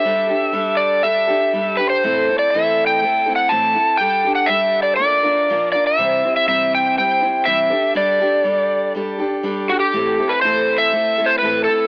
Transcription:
X:1
M:4/4
L:1/16
Q:1/4=121
K:Ador
V:1 name="Electric slide guitar"
e6 d2 e6 B c- | c3 d e3 g4 f a4 | g3 f e3 d d6 d e- | e3 e e2 g2 g4 e4 |
d8 z6 F G- | G3 B c3 e4 c B2 A2 |]
V:2 name="Steel-string acoustic guitar"
[G,DGA]2 [DGA]2 [G,DGA]4 [G,DGA]2 [DGA]2 [G,DGA]2 [DGA]2 | [A,,E,A,CEA]2 [A,CEA]2 [A,,E,A,CEA]4 [A,CEA]2 [A,CEA]2 [A,,E,A,CEA]2 [A,CEA]2 | [G,DGA]2 [DGA]2 [G,DGA]4 [_B,D=F_B]2 [B,DFB]2 [_B,,=F,B,DFB]2 [B,DFB]2 | [C,E,G,CEc]2 [G,CEc]2 [C,E,G,CEc]4 [G,CEc]2 [G,CEc]2 [C,E,G,CEc]2 [DGA]2 |
[G,DGA]2 [DGA]2 [G,DGA]4 [G,DGA]2 [DGA]2 [G,DGA]2 [DGA]2 | [A,,E,A,CEA]2 [A,CEA]2 [A,,E,A,CEA]4 [A,CEA]2 [A,CEA]2 [A,,E,A,CEA]2 [A,CEA]2 |]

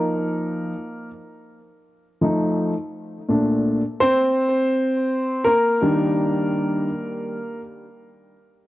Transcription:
X:1
M:4/4
L:1/8
Q:"Swing 16ths" 1/4=83
K:Bb
V:1 name="Grand piano"
B3 z4 z | z3 [Cc]4 [B,B]- | [B,B]4- [B,B] z3 |]
V:2 name="Grand piano"
[F,B,E]2 z4 [F,A,E] z | z [B,,A,D] z6 | [E,G,D]3 z4 z |]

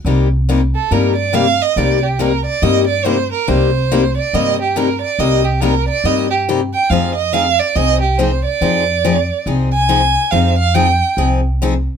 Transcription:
X:1
M:4/4
L:1/8
Q:"Swing" 1/4=140
K:Cm
V:1 name="Violin"
z3 =A B d f e | d G B d e d c B | c3 d e G B d | e G B d e G z g |
f e f d e G c d- | d4 z a3 | f f g2 z4 |]
V:2 name="Steel-string acoustic guitar"
[C,G,B,EG] z [C,G,B,EG] z [C,G,B,EG] z [C,G,B,EG] z | [C,G,B,EG] z [C,G,B,EG] z [C,G,B,EG] z [C,G,B,EG] z | [C,G,B,EG] z [C,G,B,EG] z [C,G,B,EG] z [C,G,B,EG] z | [C,G,B,EG] z [C,G,B,EG] z [C,G,B,EG] z [C,G,B,EG] z |
[F,CEA] z [F,CEA] z [F,CEA] z [F,CEA] z | [F,CEA] z [F,CEA] z [F,CEA] z [F,CEA] z | [F,CEA] z [F,CEA] z [F,CEA] z [F,CEA] z |]
V:3 name="Upright bass" clef=bass
C,,4 G,,4 | C,,4 G,,4 | C,,4 G,,4 | C,,4 G,,4 |
F,,4 C,,4 | F,,4 C,,4 | F,,4 C,,4 |]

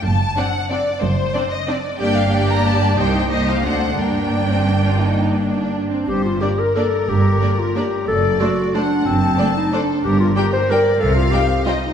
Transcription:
X:1
M:3/4
L:1/8
Q:1/4=180
K:Gm
V:1 name="Violin section"
a2 ^f2 d2 | c3 e d2 | g f g b a2 | g2 e f ^f2 |
g6- | g4 z2 | c2 B4- | B6 |
d4 ^f2 | a4 A2 | B2 B2 d2 | f4 e2 |]
V:2 name="Violin section"
z2 [Dd]2 [Dd]2 | z2 [Dd]2 [Dd]2 | [Gd]2 [Gd]4 | [Gc]2 [Gc]2 [Dc]2 |
[DB]2 D C D F | E2 D3 C | z2 [Bd]2 [Bd]2 | z2 [Bd]2 [Bd]2 |
z2 [cd]2 [cd]2 | z2 [cd]2 [cd]2 | z2 [Bg]2 [Bg]2 | z2 [cg]2 [cg]2 |]
V:3 name="Clarinet"
z6 | z6 | z6 | z6 |
z6 | z3 E D2 | G F G B A2 | G3 F G2 |
A2 ^F2 D2 | C3 E D2 | G F G c B2 | A F G2 F E |]
V:4 name="Viola section"
z2 [CD]2 [CD]2 | z2 [CD]2 [CD]2 | [B,D]2 [B,D]4 | [B,E]2 [B,E]2 [A,D]2 |
[B,D]6- | [B,D]4- [B,D] z | z2 [B,D]2 [B,D]2 | z2 [B,D]2 [B,D]2 |
z2 [A,D]2 [A,D]2 | z2 [A,D]2 [A,D]2 | z2 [G,D]2 [G,D]2 | z2 [G,E]2 [G,E]2 |]
V:5 name="Cello section" clef=bass
^F,,2 z4 | ^F,,2 z4 | G,,6 | C,,4 D,,2 |
G,,6- | G,,4- G,, z | G,,2 z4 | G,,2 z4 |
^F,,2 z4 | ^F,,2 z4 | G,,2 z4 | C,2 z4 |]
V:6 name="Double bass section" clef=bass
^F,,,2 z4 | ^F,,,2 z4 | G,,,6 | C,,4 D,,2 |
G,,,6- | G,,,4- G,,, z | G,,,2 z4 | G,,,2 z4 |
^F,,,2 z4 | ^F,,,2 z4 | G,,,2 z4 | C,,2 z4 |]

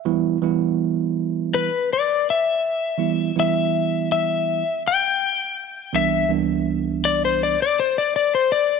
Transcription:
X:1
M:4/4
L:1/16
Q:1/4=82
K:Em
V:1 name="Electric slide guitar"
z8 B2 d2 e4- | e2 e4 e4 g6 | e2 z4 d c d d c d d c d2 |]
V:2 name="Tine electric piano" clef=bass
[E,G,B,E]2 [E,G,B,E]6 z8 | [E,G,B,E]2 [E,G,B,E]6 z8 | [C,,E,G,B,D]2 [C,,E,G,B,D]6 z8 |]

